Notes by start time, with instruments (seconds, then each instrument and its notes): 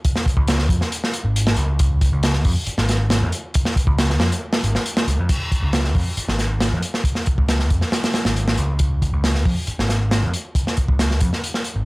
0.05 kick, closed hi-hat
0.16 snare
0.26 kick, closed hi-hat
0.37 picked electric bass C#2, kick
0.48 snare, closed hi-hat
0.59 snare
0.69 picked electric bass F2, kick, closed hi-hat
0.81 snare
0.92 closed hi-hat
1.04 snare
1.14 closed hi-hat
1.25 picked electric bass G#1
1.36 closed hi-hat
1.47 snare
1.56 picked electric bass C#2, closed hi-hat
1.79 kick, closed hi-hat
2.01 kick, closed hi-hat
2.12 picked electric bass C#2
2.23 snare, closed hi-hat
2.33 snare
2.45 picked electric bass F2, kick, open hi-hat
2.67 muted picked electric bass stroke, closed hi-hat
2.78 picked electric bass G#1, snare
2.89 snare, closed hi-hat
3.10 snare, closed hi-hat
3.22 picked electric bass F2
3.32 closed hi-hat
3.54 kick, closed hi-hat
3.65 snare
3.76 kick, closed hi-hat
3.87 picked electric bass C#2, kick
3.99 snare, closed hi-hat
4.10 snare
4.20 picked electric bass F2, snare
4.32 closed hi-hat
4.53 snare
4.64 picked electric bass G#1, closed hi-hat
4.75 snare
4.86 closed hi-hat
4.97 snare
5.08 picked electric bass C#2, closed hi-hat
5.19 picked electric bass F2
5.29 kick, closed hi-hat, crash
5.52 kick, closed hi-hat
5.63 picked electric bass C#2
5.73 snare, closed hi-hat
5.84 snare
5.95 picked electric bass F2, kick, open hi-hat
6.17 muted picked electric bass stroke, closed hi-hat
6.28 picked electric bass G#1, snare
6.39 snare, closed hi-hat
6.61 snare, closed hi-hat
6.72 picked electric bass F2
6.82 closed hi-hat
6.94 snare
7.04 kick, closed hi-hat
7.15 snare
7.26 kick, closed hi-hat
7.38 picked electric bass C#2, kick
7.48 snare, closed hi-hat
7.59 snare
7.70 picked electric bass F2, kick, closed hi-hat
7.81 snare
7.92 snare, closed hi-hat
8.04 snare, closed hi-hat
8.14 snare, closed hi-hat
8.25 picked electric bass G#1, snare, closed hi-hat
8.36 closed hi-hat
8.48 snare
8.57 picked electric bass C#2, closed hi-hat
8.79 kick, closed hi-hat
9.02 kick, closed hi-hat
9.13 picked electric bass C#2
9.24 snare, closed hi-hat
9.35 snare
9.45 picked electric bass F2, kick, open hi-hat
9.67 muted picked electric bass stroke, closed hi-hat
9.79 picked electric bass G#1, snare
9.89 snare, closed hi-hat
10.11 snare, closed hi-hat
10.23 picked electric bass F2
10.34 closed hi-hat
10.55 kick, closed hi-hat
10.67 snare
10.77 kick, closed hi-hat
10.88 picked electric bass C#2, kick
10.99 snare, closed hi-hat
11.11 snare
11.20 picked electric bass F2, kick, closed hi-hat
11.33 snare
11.44 closed hi-hat
11.54 snare
11.64 closed hi-hat
11.76 picked electric bass G#1